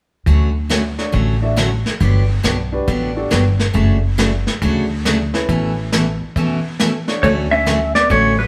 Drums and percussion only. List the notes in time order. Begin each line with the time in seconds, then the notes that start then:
0.26 brush sweep, kick
0.70 snare, hi-hat pedal
0.98 snare
1.14 brush sweep, kick
1.57 snare, hi-hat pedal
1.86 snare
2.01 brush sweep, kick
2.44 snare, hi-hat pedal
2.88 brush sweep, kick
3.31 snare, hi-hat pedal
3.59 snare
3.75 brush sweep, kick
4.19 snare, hi-hat pedal
4.47 snare
4.62 brush sweep, kick
5.05 snare, hi-hat pedal
5.34 snare
5.49 brush sweep, kick
5.92 snare, hi-hat pedal
6.36 brush sweep, kick
6.79 snare, hi-hat pedal
7.08 snare
7.23 brush sweep, kick
7.67 snare, hi-hat pedal
7.95 snare
8.10 brush sweep, kick